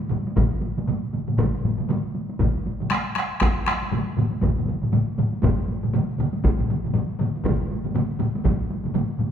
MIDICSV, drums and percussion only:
0, 0, Header, 1, 2, 480
1, 0, Start_track
1, 0, Tempo, 507614
1, 349, Time_signature, 4, 2, 24, 8
1, 4667, Tempo, 500417
1, 8870, End_track
2, 0, Start_track
2, 0, Title_t, "Taiko and cinematic ensemble drums"
2, 99, Note_on_c, 9, 47, 88
2, 104, Note_on_c, 9, 45, 85
2, 112, Note_on_c, 9, 48, 58
2, 193, Note_off_c, 9, 47, 0
2, 199, Note_off_c, 9, 45, 0
2, 207, Note_off_c, 9, 48, 0
2, 254, Note_on_c, 9, 48, 55
2, 340, Note_on_c, 9, 45, 89
2, 344, Note_off_c, 9, 48, 0
2, 344, Note_on_c, 9, 48, 70
2, 347, Note_on_c, 9, 47, 89
2, 351, Note_on_c, 9, 41, 101
2, 434, Note_off_c, 9, 45, 0
2, 439, Note_off_c, 9, 48, 0
2, 442, Note_off_c, 9, 47, 0
2, 445, Note_off_c, 9, 41, 0
2, 585, Note_on_c, 9, 48, 54
2, 679, Note_off_c, 9, 48, 0
2, 731, Note_on_c, 9, 45, 59
2, 738, Note_on_c, 9, 47, 61
2, 741, Note_on_c, 9, 48, 50
2, 826, Note_off_c, 9, 45, 0
2, 830, Note_on_c, 9, 45, 93
2, 833, Note_off_c, 9, 47, 0
2, 835, Note_off_c, 9, 48, 0
2, 837, Note_on_c, 9, 47, 82
2, 838, Note_on_c, 9, 48, 62
2, 925, Note_off_c, 9, 45, 0
2, 931, Note_off_c, 9, 47, 0
2, 932, Note_off_c, 9, 48, 0
2, 1067, Note_on_c, 9, 45, 61
2, 1073, Note_on_c, 9, 47, 64
2, 1080, Note_on_c, 9, 48, 46
2, 1161, Note_off_c, 9, 45, 0
2, 1168, Note_off_c, 9, 47, 0
2, 1175, Note_off_c, 9, 48, 0
2, 1210, Note_on_c, 9, 45, 62
2, 1216, Note_on_c, 9, 47, 65
2, 1230, Note_on_c, 9, 48, 44
2, 1305, Note_off_c, 9, 45, 0
2, 1305, Note_on_c, 9, 45, 81
2, 1306, Note_on_c, 9, 41, 101
2, 1311, Note_off_c, 9, 47, 0
2, 1315, Note_on_c, 9, 47, 90
2, 1324, Note_off_c, 9, 48, 0
2, 1324, Note_on_c, 9, 48, 72
2, 1400, Note_off_c, 9, 41, 0
2, 1400, Note_off_c, 9, 45, 0
2, 1410, Note_off_c, 9, 47, 0
2, 1419, Note_off_c, 9, 48, 0
2, 1547, Note_on_c, 9, 45, 67
2, 1558, Note_on_c, 9, 47, 60
2, 1560, Note_on_c, 9, 48, 50
2, 1642, Note_off_c, 9, 45, 0
2, 1652, Note_off_c, 9, 47, 0
2, 1655, Note_off_c, 9, 48, 0
2, 1685, Note_on_c, 9, 45, 71
2, 1703, Note_on_c, 9, 47, 60
2, 1710, Note_on_c, 9, 48, 45
2, 1779, Note_off_c, 9, 45, 0
2, 1785, Note_on_c, 9, 45, 94
2, 1791, Note_off_c, 9, 47, 0
2, 1791, Note_on_c, 9, 47, 93
2, 1800, Note_off_c, 9, 48, 0
2, 1800, Note_on_c, 9, 48, 67
2, 1880, Note_off_c, 9, 45, 0
2, 1886, Note_off_c, 9, 47, 0
2, 1895, Note_off_c, 9, 48, 0
2, 2030, Note_on_c, 9, 48, 47
2, 2125, Note_off_c, 9, 48, 0
2, 2169, Note_on_c, 9, 48, 47
2, 2264, Note_off_c, 9, 48, 0
2, 2270, Note_on_c, 9, 45, 96
2, 2272, Note_on_c, 9, 48, 58
2, 2273, Note_on_c, 9, 41, 91
2, 2274, Note_on_c, 9, 47, 92
2, 2365, Note_off_c, 9, 45, 0
2, 2366, Note_off_c, 9, 48, 0
2, 2367, Note_off_c, 9, 41, 0
2, 2369, Note_off_c, 9, 47, 0
2, 2514, Note_on_c, 9, 48, 50
2, 2609, Note_off_c, 9, 48, 0
2, 2649, Note_on_c, 9, 48, 46
2, 2654, Note_on_c, 9, 45, 56
2, 2661, Note_on_c, 9, 47, 67
2, 2741, Note_on_c, 9, 37, 66
2, 2743, Note_off_c, 9, 48, 0
2, 2748, Note_on_c, 9, 48, 58
2, 2749, Note_off_c, 9, 45, 0
2, 2755, Note_off_c, 9, 47, 0
2, 2765, Note_off_c, 9, 37, 0
2, 2765, Note_on_c, 9, 37, 67
2, 2843, Note_off_c, 9, 48, 0
2, 2860, Note_off_c, 9, 37, 0
2, 2981, Note_on_c, 9, 37, 63
2, 2983, Note_on_c, 9, 48, 46
2, 3009, Note_off_c, 9, 37, 0
2, 3009, Note_on_c, 9, 37, 69
2, 3078, Note_off_c, 9, 48, 0
2, 3103, Note_off_c, 9, 37, 0
2, 3218, Note_on_c, 9, 37, 67
2, 3225, Note_on_c, 9, 48, 68
2, 3234, Note_off_c, 9, 37, 0
2, 3234, Note_on_c, 9, 37, 70
2, 3234, Note_on_c, 9, 41, 106
2, 3320, Note_off_c, 9, 48, 0
2, 3329, Note_off_c, 9, 37, 0
2, 3329, Note_off_c, 9, 41, 0
2, 3465, Note_on_c, 9, 37, 73
2, 3473, Note_on_c, 9, 48, 50
2, 3476, Note_off_c, 9, 37, 0
2, 3476, Note_on_c, 9, 37, 70
2, 3567, Note_off_c, 9, 48, 0
2, 3570, Note_off_c, 9, 37, 0
2, 3618, Note_on_c, 9, 48, 48
2, 3700, Note_on_c, 9, 45, 85
2, 3710, Note_on_c, 9, 47, 90
2, 3711, Note_off_c, 9, 48, 0
2, 3711, Note_on_c, 9, 48, 66
2, 3795, Note_off_c, 9, 45, 0
2, 3804, Note_off_c, 9, 47, 0
2, 3805, Note_off_c, 9, 48, 0
2, 3939, Note_on_c, 9, 48, 51
2, 3940, Note_on_c, 9, 45, 88
2, 3953, Note_on_c, 9, 47, 90
2, 4034, Note_off_c, 9, 45, 0
2, 4034, Note_off_c, 9, 48, 0
2, 4048, Note_off_c, 9, 47, 0
2, 4074, Note_on_c, 9, 48, 51
2, 4169, Note_off_c, 9, 48, 0
2, 4174, Note_on_c, 9, 48, 65
2, 4184, Note_on_c, 9, 41, 89
2, 4188, Note_on_c, 9, 45, 70
2, 4193, Note_on_c, 9, 47, 62
2, 4268, Note_off_c, 9, 48, 0
2, 4279, Note_off_c, 9, 41, 0
2, 4283, Note_off_c, 9, 45, 0
2, 4287, Note_off_c, 9, 47, 0
2, 4334, Note_on_c, 9, 45, 65
2, 4338, Note_on_c, 9, 47, 71
2, 4403, Note_on_c, 9, 48, 53
2, 4427, Note_off_c, 9, 45, 0
2, 4427, Note_off_c, 9, 47, 0
2, 4427, Note_on_c, 9, 45, 67
2, 4427, Note_on_c, 9, 47, 72
2, 4498, Note_off_c, 9, 48, 0
2, 4521, Note_off_c, 9, 47, 0
2, 4522, Note_off_c, 9, 45, 0
2, 4555, Note_on_c, 9, 48, 49
2, 4568, Note_on_c, 9, 47, 62
2, 4571, Note_on_c, 9, 45, 60
2, 4649, Note_off_c, 9, 48, 0
2, 4652, Note_off_c, 9, 47, 0
2, 4652, Note_on_c, 9, 47, 84
2, 4660, Note_on_c, 9, 48, 61
2, 4666, Note_off_c, 9, 45, 0
2, 4666, Note_on_c, 9, 45, 90
2, 4748, Note_off_c, 9, 47, 0
2, 4756, Note_off_c, 9, 48, 0
2, 4762, Note_off_c, 9, 45, 0
2, 4900, Note_on_c, 9, 47, 87
2, 4903, Note_on_c, 9, 48, 50
2, 4907, Note_on_c, 9, 45, 93
2, 4996, Note_off_c, 9, 47, 0
2, 4999, Note_off_c, 9, 48, 0
2, 5003, Note_off_c, 9, 45, 0
2, 5043, Note_on_c, 9, 48, 42
2, 5139, Note_off_c, 9, 48, 0
2, 5140, Note_on_c, 9, 48, 66
2, 5143, Note_on_c, 9, 41, 108
2, 5146, Note_on_c, 9, 45, 93
2, 5152, Note_on_c, 9, 47, 94
2, 5236, Note_off_c, 9, 48, 0
2, 5239, Note_off_c, 9, 41, 0
2, 5242, Note_off_c, 9, 45, 0
2, 5247, Note_off_c, 9, 47, 0
2, 5384, Note_on_c, 9, 48, 52
2, 5480, Note_off_c, 9, 48, 0
2, 5526, Note_on_c, 9, 45, 67
2, 5536, Note_on_c, 9, 48, 47
2, 5541, Note_on_c, 9, 47, 63
2, 5622, Note_off_c, 9, 45, 0
2, 5625, Note_off_c, 9, 48, 0
2, 5625, Note_on_c, 9, 48, 66
2, 5627, Note_on_c, 9, 45, 100
2, 5636, Note_off_c, 9, 47, 0
2, 5640, Note_on_c, 9, 47, 87
2, 5721, Note_off_c, 9, 48, 0
2, 5723, Note_off_c, 9, 45, 0
2, 5736, Note_off_c, 9, 47, 0
2, 5863, Note_on_c, 9, 48, 49
2, 5865, Note_on_c, 9, 45, 90
2, 5878, Note_on_c, 9, 47, 100
2, 5959, Note_off_c, 9, 48, 0
2, 5961, Note_off_c, 9, 45, 0
2, 5974, Note_off_c, 9, 47, 0
2, 6007, Note_on_c, 9, 48, 51
2, 6103, Note_off_c, 9, 48, 0
2, 6106, Note_on_c, 9, 45, 69
2, 6108, Note_on_c, 9, 48, 68
2, 6111, Note_on_c, 9, 41, 108
2, 6116, Note_on_c, 9, 47, 65
2, 6202, Note_off_c, 9, 45, 0
2, 6203, Note_off_c, 9, 48, 0
2, 6206, Note_off_c, 9, 41, 0
2, 6212, Note_off_c, 9, 47, 0
2, 6252, Note_on_c, 9, 45, 65
2, 6265, Note_on_c, 9, 47, 73
2, 6348, Note_off_c, 9, 45, 0
2, 6350, Note_on_c, 9, 45, 69
2, 6359, Note_on_c, 9, 48, 49
2, 6361, Note_off_c, 9, 47, 0
2, 6363, Note_on_c, 9, 47, 75
2, 6446, Note_off_c, 9, 45, 0
2, 6455, Note_off_c, 9, 48, 0
2, 6459, Note_off_c, 9, 47, 0
2, 6497, Note_on_c, 9, 48, 51
2, 6498, Note_on_c, 9, 45, 60
2, 6513, Note_on_c, 9, 47, 71
2, 6586, Note_off_c, 9, 45, 0
2, 6586, Note_off_c, 9, 48, 0
2, 6586, Note_on_c, 9, 45, 93
2, 6586, Note_on_c, 9, 48, 62
2, 6604, Note_off_c, 9, 47, 0
2, 6604, Note_on_c, 9, 47, 86
2, 6682, Note_off_c, 9, 45, 0
2, 6682, Note_off_c, 9, 48, 0
2, 6700, Note_off_c, 9, 47, 0
2, 6829, Note_on_c, 9, 45, 92
2, 6840, Note_on_c, 9, 48, 52
2, 6849, Note_on_c, 9, 47, 94
2, 6925, Note_off_c, 9, 45, 0
2, 6936, Note_off_c, 9, 48, 0
2, 6945, Note_off_c, 9, 47, 0
2, 6991, Note_on_c, 9, 48, 42
2, 7069, Note_on_c, 9, 45, 95
2, 7080, Note_off_c, 9, 48, 0
2, 7080, Note_on_c, 9, 48, 71
2, 7081, Note_on_c, 9, 41, 109
2, 7081, Note_on_c, 9, 47, 98
2, 7165, Note_off_c, 9, 45, 0
2, 7176, Note_off_c, 9, 48, 0
2, 7177, Note_off_c, 9, 41, 0
2, 7177, Note_off_c, 9, 47, 0
2, 7325, Note_on_c, 9, 48, 54
2, 7421, Note_off_c, 9, 48, 0
2, 7456, Note_on_c, 9, 45, 68
2, 7468, Note_on_c, 9, 47, 69
2, 7472, Note_on_c, 9, 48, 50
2, 7552, Note_off_c, 9, 45, 0
2, 7554, Note_on_c, 9, 45, 92
2, 7560, Note_off_c, 9, 47, 0
2, 7560, Note_on_c, 9, 47, 96
2, 7565, Note_off_c, 9, 48, 0
2, 7565, Note_on_c, 9, 48, 76
2, 7649, Note_off_c, 9, 45, 0
2, 7656, Note_off_c, 9, 47, 0
2, 7660, Note_off_c, 9, 48, 0
2, 7789, Note_on_c, 9, 45, 93
2, 7793, Note_on_c, 9, 47, 100
2, 7800, Note_on_c, 9, 48, 51
2, 7885, Note_off_c, 9, 45, 0
2, 7889, Note_off_c, 9, 47, 0
2, 7896, Note_off_c, 9, 48, 0
2, 7949, Note_on_c, 9, 48, 58
2, 8029, Note_on_c, 9, 45, 97
2, 8034, Note_on_c, 9, 47, 93
2, 8035, Note_on_c, 9, 41, 102
2, 8044, Note_off_c, 9, 48, 0
2, 8048, Note_on_c, 9, 48, 66
2, 8125, Note_off_c, 9, 45, 0
2, 8130, Note_off_c, 9, 47, 0
2, 8131, Note_off_c, 9, 41, 0
2, 8144, Note_off_c, 9, 48, 0
2, 8283, Note_on_c, 9, 48, 57
2, 8379, Note_off_c, 9, 48, 0
2, 8412, Note_on_c, 9, 45, 68
2, 8423, Note_on_c, 9, 47, 68
2, 8430, Note_on_c, 9, 48, 52
2, 8508, Note_off_c, 9, 45, 0
2, 8510, Note_on_c, 9, 45, 97
2, 8514, Note_off_c, 9, 47, 0
2, 8514, Note_on_c, 9, 47, 87
2, 8525, Note_off_c, 9, 48, 0
2, 8525, Note_on_c, 9, 48, 61
2, 8606, Note_off_c, 9, 45, 0
2, 8610, Note_off_c, 9, 47, 0
2, 8621, Note_off_c, 9, 48, 0
2, 8744, Note_on_c, 9, 45, 66
2, 8757, Note_on_c, 9, 47, 68
2, 8760, Note_on_c, 9, 48, 52
2, 8840, Note_off_c, 9, 45, 0
2, 8852, Note_off_c, 9, 47, 0
2, 8856, Note_off_c, 9, 48, 0
2, 8870, End_track
0, 0, End_of_file